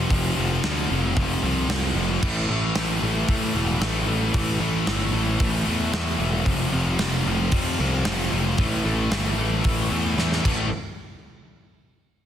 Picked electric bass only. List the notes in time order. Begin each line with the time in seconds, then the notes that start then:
0.10 F1
0.37 F1
0.64 D2
0.91 F1
1.17 F1
1.43 C2
1.68 C2
1.95 F1
2.23 A1
2.49 A1
2.76 A1
3.02 A1
3.29 A2
3.54 E1
3.81 A1
4.07 A1
4.34 A1
4.60 A1
4.87 G1
5.13 A1
5.40 A1
5.68 E2
5.93 E2
6.19 E1
6.46 F1
6.73 F1
6.99 F1
7.26 F1
7.52 F2
7.79 C2
8.05 F1
8.32 F1
8.58 A1
8.86 A1
9.11 G1
9.37 A1
9.65 A1
9.91 E2
10.17 E2
10.45 A1